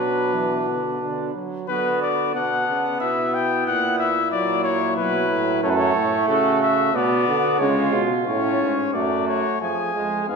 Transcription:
Already playing: B2 F#3 D4 B4
0.34 E3
0.68 D3
1.01 D3
1.35 F#3
1.68 D3 B3 F#4 B4
2.02 D5
2.35 B2 B3 D4 F#5
2.68 C#3
3.00 B2 E4 E5
3.34 G5
3.67 A#2 F#5
3.99 E5
4.31 A#2 F#3 D5
4.64 C#5
4.96 B2 F#3 B4
5.30 A2
5.63 F#2 A3 A4 C#5
5.70 B4
5.77 C#5
5.95 A2
6.28 C#3 F#4 A4
6.63 E5
6.94 B2 B3 F#4 D5
7.28 D3
7.59 C#3 G#3 F4 C#5
7.94 B2
8.27 A2 C#4 C#5
8.61 G#2
8.93 F#2 A3 F#4 D5
9.28 C#5
9.61 F2 F3 G#4 G#5
9.95 F2 G#3
10.28 G#2 B3 G#4 F5

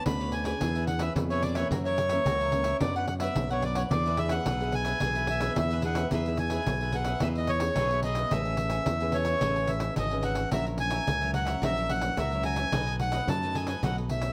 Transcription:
0.06 D2 D3 B3 C#4 D4 F#4 B4 C#5 D5 B5, pandeiro
0.20 B4 C#5 D5, pandeiro
0.32 G#5, pandeiro
0.44 B3 D4 G#4 B4 C#5 D5 G#5, pandeiro
0.60 E2 E3 D4 G#4 B4 E5, pandeiro
0.75 G#4 B4 E5, pandeiro
0.87 B3 D4 G#4 F#5, muted cavaquinho stroke, pandeiro
0.99 G#4 B4 E5, pandeiro
1.16 F2 B2 B3 D4 G#4, pandeiro
1.30 G#4 B4 C#5 E5, pandeiro
1.42 D4 G#4 B4 D5 E5, pandeiro
1.55 E3 A#3 C#4 G#4 B4 C#5 E5, pandeiro
1.71 F#2 F#4 A#4 C#5 E5, pandeiro
1.85 A#4 C#5 E5, pandeiro
1.98 pandeiro
2.09 E3 A#3 C#4 A#4 C#5 E5, pandeiro
2.26 C#2 C#3 F#4 A#4 C#5 E5, pandeiro
2.40 A#4 C#5 E5, pandeiro
2.52 E3 A#3 C#4, pandeiro
2.64 A#4 C#5 E5, pandeiro
2.80 F#2 F#3 B3 D4 B4 D5, pandeiro
2.84 F#5
2.96 B4 D5 F#5, pandeiro
3.07 F#5, muted cavaquinho stroke, pandeiro
3.19 F#3 B3 D4 D5 E5 F#5, pandeiro
3.23 B4
3.35 B1 F#2, pandeiro
3.49 F#3 B3 D4 B4 C#5 D5 F#5, pandeiro
3.62 D4 B4 D5 F#5, pandeiro
3.75 B4 C#5 D5 F#5, pandeiro
3.89 E2 E3 B3 D4 G#4 D5, pandeiro
3.93 B4 E5
4.06 G#4 B4 E5, pandeiro
4.17 B3 D4 G#4 E5, pandeiro
4.29 G#4 B4 E5 F#5, pandeiro
4.46 B1 B2 D4 G#4 B4 E5, pandeiro
4.60 B3 D4 G#4 B4 E5, pandeiro
4.64 G#4
4.72 G#5, pandeiro
4.85 G#4 B4 E5, pandeiro
5.00 B1 E3 B3 D4 G#4 B4, pandeiro
5.05 E5
5.15 G#4 B4 E5, pandeiro
5.27 E5, muted cavaquinho stroke, pandeiro
5.40 B3 D4 G#4 B4 E5, pandeiro
5.56 E2 B2 E5, pandeiro
5.71 G#4 B4 E5, pandeiro
5.82 B3 D4 G#4 B4 F#5, pandeiro
5.86 E5
5.95 G#4 B4 E5, pandeiro
6.11 E2 E3 B3 D#4 G#4 B4 E5, pandeiro
6.26 B3 D#4 G#4 B4 E5, pandeiro
6.37 G#5, muted cavaquinho stroke, pandeiro
6.50 B3 D#4 G#4 B4 E5, pandeiro
6.66 B1 B2, pandeiro
6.81 G#4 B4 E5, pandeiro
6.92 B3 D#4 G#4 B4 E5 F#5, pandeiro
7.05 G#4 B4 E5, pandeiro
7.20 E2 E3 B3 D#4 G#4 B4 E5, pandeiro
7.25 E5
7.35 D#5 E5, pandeiro
7.40 G#4 B4
7.47 C#5, muted cavaquinho stroke, pandeiro
7.60 B3 D#4 G#4, pandeiro
7.76 B1 B2 D#4 G#4 B4, pandeiro
7.80 E5
7.91 B3 D#4 G#4 B4 E5, pandeiro
7.95 G#4
8.03 D#4 G#4 B4 D#5 E5, pandeiro
8.15 B4 E5, pandeiro
8.20 G#4
8.31 A1 A3 C#4 G#4 A4 B4 C#5 E5 G#5, pandeiro
8.45 C#5 E5 G#5, pandeiro
8.57 C#4 G#4 B4, muted cavaquinho stroke, pandeiro
8.70 C#5 E5 G#5, pandeiro
8.86 E2 E3, pandeiro
9.00 C#4 G#4 B4 C#5 E5 G#5, pandeiro
9.12 A4 C#5 E5 G#5, pandeiro
9.25 C#5 E5 G#5, pandeiro
9.41 A1 A3 C#4 G#4 A4 B4 C#5 E5 G#5, pandeiro
9.56 E5 G#5, pandeiro
9.67 C#4 G#4 B4 E5, muted cavaquinho stroke, pandeiro
9.80 pandeiro
9.96 G#1 E3 A4 C#5 D#5 E5 G#5, pandeiro
10.10 C#4 G#4 B4 C#5 E5 G#5, pandeiro
10.22 A4 C#5 E5 F#5 G#5, pandeiro
10.35 C#5 E5 G#5, pandeiro
10.51 A#1 A#2 F#3 C#4 E4 F#4 A#4 C#5 E5, pandeiro
10.66 A#4 C#5 E5, pandeiro
10.78 F#3 C#4 E4 G#5, muted cavaquinho stroke, pandeiro
10.90 A#4 C#5 E5, pandeiro
11.07 C#2 A#2, pandeiro
11.21 F#3 C#4 E4 A#4 C#5 E5, pandeiro
11.34 F#4 A#4 C#5 E5 F#5, pandeiro
11.45 A#4 C#5 E5, pandeiro
11.62 A#1 A#2 F#3 C#4 E4 F#4 A#4 C#5 E5, pandeiro
11.77 A#4 C#5 E5, pandeiro
11.89 F#3 C#4 E4 F#5, muted cavaquinho stroke, pandeiro
12.02 pandeiro
12.17 C#2 A#2 F#4 A#4 C#5 E5, pandeiro
12.32 F#3 C#4 E4 A#4 C#5 E5, pandeiro
12.43 F#4 A#4 C#5 E5 G#5, pandeiro
12.56 A#4 C#5 E5, pandeiro
12.72 B1 B2 F#3 A3 D#4 A4 B4 D#5, pandeiro
12.87 A4 B4 D#5, pandeiro
12.99 F#3 A3 D#4 F#5, muted cavaquinho stroke, pandeiro
13.12 A4 B4 D#5, pandeiro
13.28 F#2 A5, pandeiro
13.43 F#3 A3 D#4 A4 B4 D#5, pandeiro
13.55 D#4 A4 B4 D#5 G#5, pandeiro
13.67 A4 B4 D#5 G#5, pandeiro
13.83 B1 B2 F#3 A3 D#4 A4 B4 D#5 F#5, pandeiro
13.96 A4 B4 D#5, pandeiro
14.09 F#3 A3 D#4 E5, muted cavaquinho stroke, pandeiro
14.22 pandeiro

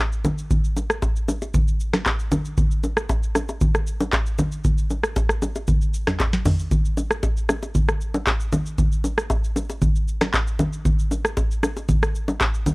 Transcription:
0.12 shaker
0.25 low bongo, low conga, shaker
0.38 shaker
0.51 kick, low conga, shaker
0.64 shaker
0.77 low bongo, shaker
0.90 cross-stick, shaker
1.02 kick, high bongo, shaker
1.16 shaker
1.28 high bongo, low bongo, shaker
1.42 high bongo, shaker
1.54 kick, low conga, shaker
1.68 shaker
1.80 shaker
1.93 cross-stick, snare, low bongo, shaker
2.06 kick, clap, high bongo, shaker
2.19 shaker
2.32 low bongo, low conga, shaker
2.45 shaker
2.57 kick, low conga, shaker
2.71 shaker
2.84 low bongo, shaker
2.97 cross-stick, shaker
3.09 kick, high bongo, shaker
3.23 shaker
3.35 cross-stick, high bongo, low bongo, shaker
3.49 high bongo, shaker
3.61 kick, low conga, shaker
3.75 cross-stick, shaker
3.87 shaker
4.00 low bongo, shaker
4.13 kick, clap, high bongo, shaker
4.26 shaker
4.38 low bongo, low conga, shaker
4.52 shaker
4.64 kick, low conga, shaker
4.78 shaker
4.90 low bongo, shaker
5.03 cross-stick, shaker
5.16 kick, high bongo, shaker
5.29 cross-stick, shaker
5.42 high bongo, low bongo, shaker
5.56 high bongo, shaker
5.68 kick, low conga, shaker
5.81 shaker
5.94 shaker
6.07 cross-stick, snare, mid tom, low bongo, shaker
6.20 kick, clap, high bongo, shaker
6.33 snare, shaker
6.46 mid tom, open hi-hat, low bongo, low conga, shaker
6.59 shaker
6.71 kick, low conga, shaker
6.85 shaker
6.97 low bongo, shaker
7.11 cross-stick, shaker
7.23 kick, high bongo, shaker
7.37 shaker
7.49 cross-stick, high bongo, low bongo, shaker
7.63 high bongo, shaker
7.75 kick, low conga, shaker
7.89 cross-stick, shaker
8.01 shaker
8.14 low bongo, shaker
8.27 kick, clap, high bongo, shaker
8.40 shaker
8.53 low bongo, low conga, shaker
8.66 shaker
8.78 kick, low conga, shaker
8.92 shaker
9.04 low bongo, shaker
9.18 cross-stick, shaker
9.30 kick, high bongo, shaker
9.44 shaker
9.56 high bongo, low bongo, shaker
9.70 high bongo, shaker
9.82 kick, low conga, shaker
9.96 shaker
10.08 shaker
10.21 cross-stick, snare, low bongo, shaker
10.34 kick, clap, high bongo, shaker
10.47 shaker
10.59 low bongo, low conga, shaker
10.73 shaker
10.85 kick, low conga, shaker
10.99 shaker
11.11 low bongo, shaker
11.25 cross-stick, shaker
11.37 kick, high bongo, shaker
11.51 shaker
11.63 cross-stick, high bongo, low bongo, shaker
11.77 high bongo, shaker
11.89 kick, low conga, shaker
12.03 cross-stick, shaker
12.15 shaker
12.28 low bongo, shaker
12.41 kick, clap, high bongo, shaker
12.54 shaker
12.66 low bongo, low conga, shaker

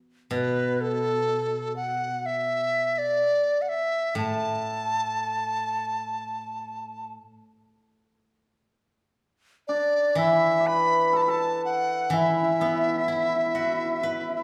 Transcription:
0.31 B2 B4
0.81 A4
1.76 F#5
2.26 E5
2.98 D5
3.62 F#5
3.69 E5
4.15 A2 A5
9.68 D4 D5
10.15 E3 E4 E5
10.60 D5
10.67 B4 B5
11.13 A4 A5
11.22 B5
11.28 A4 A5
11.65 F#5
12.10 E3 E4
12.14 E5
12.21 E4
12.30 E4
12.37 E4
12.43 E4
12.51 E4
12.60 B3 E4
12.66 E4
12.74 E4
12.82 E4
12.87 E4
12.96 E4
13.01 E4
13.08 E4
13.16 E4
13.23 E4
13.29 E4
13.36 E4
13.46 E4
13.53 E4 F#4
13.59 E4
13.66 E4
13.73 E4
13.78 E4
13.86 E4
13.92 E4
14.01 E4 B4
14.06 E4
14.12 E4
14.21 E4
14.30 E4
14.37 E4

